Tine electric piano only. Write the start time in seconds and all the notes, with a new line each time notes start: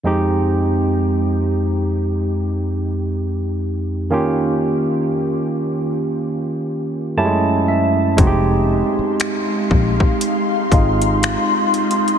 0.04 F2 G#3 C4 D#4 G4
4.10 D#3 A#3 C#4 F4 G4
7.17 F#2 A3 C#4 E4 G4 A5
7.25 G#3
7.68 E5
8.17 G#3 C4 D#4 F#4
8.27 G4
10.73 G#3 C4 D#4 F4